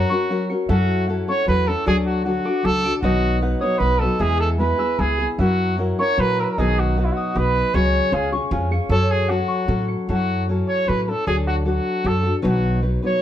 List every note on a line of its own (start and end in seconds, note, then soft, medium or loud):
0.00 0.10 F#3 soft
0.00 0.10 C#4 soft
0.00 0.10 F#4 medium
0.00 0.51 F#4 medium
0.00 1.43 C#5 medium
0.00 1.07 F#5 medium
0.00 1.11 A#5 medium
0.00 0.38 C#7 medium
0.09 0.29 C#4 soft
0.09 0.30 F#4 soft
0.09 0.30 A#4 soft
0.09 1.28 C#6 medium
0.30 0.50 F#3 soft
0.30 0.50 C#4 medium
0.30 0.50 F#4 medium
0.30 0.49 A#4 medium
0.50 0.68 C#4 soft
0.50 0.70 F#4 soft
0.50 0.69 A#4 soft
0.50 1.55 C#7 medium
0.69 1.20 F#2 medium
0.69 1.08 F#3 medium
0.69 1.08 C#4 medium
0.69 1.08 E4 medium
0.69 1.06 F#4 medium
0.69 1.08 A4 medium
0.69 2.41 E5 medium
1.07 1.28 F#3 soft
1.07 1.28 C#4 soft
1.07 1.28 E4 soft
1.07 1.27 A4 soft
1.07 2.26 F#5 medium
1.28 1.46 C#4 soft
1.28 1.47 E4 soft
1.28 1.47 A4 soft
1.28 1.47 C#5 medium
1.28 1.93 C#6 medium
1.46 1.73 E2 medium
1.46 1.67 F#3 medium
1.46 1.67 C#4 soft
1.46 1.66 E4 medium
1.46 1.65 A4 medium
1.46 1.69 B4 medium
1.46 2.65 A5 medium
1.67 1.86 C#4 soft
1.67 1.86 E4 soft
1.67 1.86 A4 soft
1.67 1.87 A4 medium
1.67 2.81 E6 medium
1.86 2.37 D2 medium
1.86 2.25 D3 medium
1.86 2.24 F#3 medium
1.86 2.24 D4 medium
1.86 2.25 F#4 medium
1.86 1.96 G#4 medium
1.86 2.25 A4 medium
1.86 3.10 D5 medium
2.07 2.24 F#4 medium
2.24 2.45 F#3 medium
2.24 2.45 D4 soft
2.24 2.67 F#4 medium
2.24 2.45 F#4 medium
2.24 2.44 A4 medium
2.24 3.42 F#5 medium
2.45 2.63 D4 soft
2.45 2.63 F#4 soft
2.45 2.63 A4 soft
2.45 3.10 D6 medium
2.63 2.90 C#2 medium
2.63 2.83 F#3 medium
2.63 2.84 D4 soft
2.63 2.84 F#4 soft
2.63 2.83 A4 medium
2.63 2.94 A4 loud
2.63 4.10 A5 medium
2.84 3.03 D4 soft
2.84 3.03 F#4 soft
2.84 3.03 A4 soft
2.84 3.10 D7 medium
3.02 3.53 B1 medium
3.02 3.42 B2 medium
3.02 3.42 D#3 medium
3.02 3.40 F#3 medium
3.02 3.40 B3 medium
3.02 3.41 D#4 medium
3.02 3.39 F#4 medium
3.02 3.41 B4 medium
3.02 4.26 D#5 medium
3.41 3.61 F#3 soft
3.41 3.61 B3 soft
3.41 3.61 D#4 medium
3.41 3.61 B4 medium
3.41 5.03 F#5 medium
3.60 3.80 F#3 soft
3.60 3.80 B3 soft
3.60 3.81 D#4 soft
3.60 3.81 B4 soft
3.60 3.80 C#5 medium
3.60 4.26 D#6 medium
3.79 4.06 B1 medium
3.79 4.01 F#3 soft
3.79 4.01 B3 medium
3.79 4.00 D#4 soft
3.79 4.01 B4 loud
3.79 4.00 B4 soft
3.79 4.98 B5 medium
3.99 4.19 F#3 soft
3.99 4.18 B3 soft
3.99 4.19 D#4 soft
3.99 4.22 A4 medium
3.99 4.20 B4 soft
3.99 4.26 D#7 medium
4.19 4.71 E2 medium
4.19 4.59 E3 medium
4.19 4.58 G#3 medium
4.19 4.58 B3 medium
4.19 4.59 E4 medium
4.19 4.59 G#4 medium
4.19 4.40 G#4 loud
4.19 5.38 E5 medium
4.41 4.49 A4 medium
4.59 4.79 G#3 soft
4.59 4.79 B3 soft
4.59 4.78 E4 medium
4.59 4.77 G#4 medium
4.59 5.01 B4 medium
4.59 6.09 G#5 medium
4.79 4.99 B3 soft
4.79 4.99 E4 soft
4.79 4.98 G#4 soft
4.79 5.93 E6 medium
4.98 5.25 C#2 medium
4.98 5.19 G#3 medium
4.98 5.20 B3 soft
4.98 5.19 E4 medium
4.98 5.29 G#4 medium
4.98 5.18 G#4 soft
4.98 6.25 B5 medium
5.19 5.39 B3 soft
5.19 5.39 E4 soft
5.19 5.39 G#4 soft
5.19 6.24 E7 medium
5.38 5.90 F#2 medium
5.38 5.77 F#3 medium
5.38 5.77 C#4 medium
5.38 5.78 E4 medium
5.38 5.77 F#4 medium
5.38 5.78 A#4 medium
5.38 6.64 E5 medium
5.77 5.98 F#3 soft
5.77 5.99 C#4 medium
5.77 5.98 E4 medium
5.77 5.97 A#4 soft
5.77 6.97 F#5 medium
5.99 6.17 C#4 soft
5.99 6.18 E4 soft
5.99 6.18 A#4 soft
5.99 6.22 C#5 medium
5.99 7.25 C#6 loud
6.18 6.43 A#2 medium
6.18 6.57 F#3 soft
6.18 6.57 C#4 soft
6.18 6.58 E4 soft
6.18 6.58 A#4 soft
6.18 6.42 B4 loud
6.18 7.42 A#5 medium
6.40 6.45 A#4 medium
6.40 6.64 E6 medium
6.44 6.52 B4 medium
6.50 6.60 A#4 medium
6.58 7.08 B1 medium
6.58 6.97 B2 medium
6.58 6.97 D#3 medium
6.58 6.95 F#3 medium
6.58 6.96 B3 medium
6.58 6.96 D#4 medium
6.58 6.81 G#4 medium
6.58 6.97 B4 medium
6.58 8.36 D#5 medium
6.79 6.97 F#4 medium
6.96 7.34 F#3 soft
6.96 7.34 B3 medium
6.96 7.35 D#4 medium
6.96 7.06 F#4 medium
6.96 7.35 B4 soft
6.96 8.19 F#5 medium
7.05 7.14 E4 medium
7.13 7.39 F#4 medium
7.13 8.34 D#6 medium
7.35 7.60 B1 medium
7.35 7.73 F#3 medium
7.35 7.74 B3 medium
7.35 7.74 D#4 soft
7.35 7.74 B4 medium
7.35 7.76 B4 medium
7.35 8.71 B5 medium
7.56 8.61 D#7 medium
7.74 7.99 C#2 medium
7.74 8.13 C#3 medium
7.74 8.11 F#3 medium
7.74 8.12 C#4 medium
7.74 8.12 F#4 medium
7.74 8.12 G#4 medium
7.74 8.90 C#5 medium
7.74 8.15 C#5 medium
8.12 8.38 C#2 medium
8.12 8.32 G#3 soft
8.12 8.32 C#4 medium
8.12 8.32 F4 medium
8.12 8.31 G#4 medium
8.12 8.33 G#4 medium
8.12 9.34 F5 medium
8.32 8.50 C#4 soft
8.32 8.50 F4 soft
8.32 8.51 G#4 soft
8.32 9.47 C#6 loud
8.51 8.77 F2 loud
8.51 8.71 G#3 medium
8.51 8.71 C#4 medium
8.51 8.71 F4 medium
8.51 8.70 G#4 medium
8.51 9.73 G#5 medium
8.71 8.89 C#4 soft
8.71 8.91 F4 soft
8.71 8.90 G#4 soft
8.71 9.77 C#7 medium
8.89 9.41 F#2 medium
8.89 9.29 F#3 medium
8.89 9.29 C#4 medium
8.89 9.30 F#4 medium
8.89 9.12 A4 loud
8.89 9.31 A4 medium
8.89 10.82 C#5 medium
9.11 9.31 G#4 medium
9.28 9.67 F#3 soft
9.28 9.67 C#4 soft
9.28 9.89 F#4 medium
9.28 9.68 F#4 soft
9.28 9.69 A4 medium
9.28 10.89 F#5 medium
9.48 10.74 C#6 medium
9.67 9.94 A2 medium
9.67 10.08 F#3 medium
9.67 10.08 C#4 medium
9.67 10.09 F#4 soft
9.67 10.09 A4 medium
9.67 11.12 A5 medium
9.88 10.93 C#7 medium
10.09 10.60 F#2 medium
10.09 10.48 F#3 soft
10.09 10.48 C#4 medium
10.09 10.49 E4 medium
10.09 10.46 F#4 medium
10.09 10.49 A4 medium
10.49 10.87 F#3 soft
10.49 10.86 C#4 soft
10.49 10.87 E4 soft
10.49 10.88 A4 medium
10.69 10.90 C#5 medium
10.87 11.14 A2 medium
10.87 11.08 F#3 soft
10.87 11.08 C#4 soft
10.87 11.07 E4 soft
10.87 11.07 A4 soft
10.87 11.03 B4 medium
11.03 11.11 B4 medium
11.08 11.27 C#4 soft
11.08 11.27 E4 soft
11.08 11.26 A4 soft
11.08 11.27 A4 medium
11.26 11.78 D2 medium
11.26 11.66 D3 medium
11.26 11.64 F#3 medium
11.26 11.64 D4 medium
11.26 11.64 F#4 medium
11.26 11.36 G#4 medium
11.26 11.65 A4 medium
11.47 11.56 F#4 medium
11.65 12.03 F#3 soft
11.65 12.04 D4 soft
11.65 12.04 F#4 soft
11.65 12.09 F#4 medium
11.65 12.05 A4 medium
12.04 12.30 F#2 medium
12.04 12.25 F#3 soft
12.04 12.24 D4 soft
12.04 12.24 F#4 soft
12.04 12.22 A4 medium
12.04 12.35 A4 loud
12.24 12.42 D4 soft
12.24 12.42 F#4 soft
12.24 12.43 A4 soft
12.42 12.96 B1 medium
12.42 12.82 B2 medium
12.42 12.82 D#3 medium
12.42 12.80 F#3 medium
12.42 12.81 B3 medium
12.42 12.81 D#4 medium
12.42 12.82 B4 medium
12.46 12.82 F#4 medium
12.82 13.02 F#3 soft
12.82 13.02 B3 medium
12.82 13.02 D#4 soft
12.82 13.01 B4 soft
13.02 13.20 F#3 soft
13.02 13.21 B3 soft
13.02 13.22 D#4 soft
13.02 13.22 B4 soft
13.02 13.22 C#5 medium